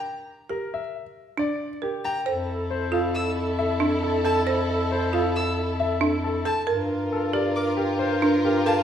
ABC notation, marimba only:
X:1
M:5/4
L:1/8
Q:1/4=136
K:F
V:1 name="Marimba"
z2 G z3 D z B z | c z2 F z3 D z A | c z2 F z3 D z A | B z2 G z3 D z A |]